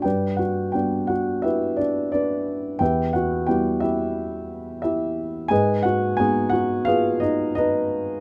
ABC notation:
X:1
M:4/4
L:1/8
Q:1/4=88
K:Glyd
V:1 name="Grand piano"
[GBdg] [Ff] [Gg] [Ff] [EGBe] [Dd] [DBd]2 | [GBeg] [Ff] [Gg] [EGe]3 [EGe]2 | [^GB^d^g] [Ff] [Gg] [Ff] [^EGB^e] [^Dd] [DBd]2 |]
V:2 name="Grand piano"
G,,2 [G,B,D]6 | E,,2 [G,B,E]6 | ^G,,2 [^G,B,^D]6 |]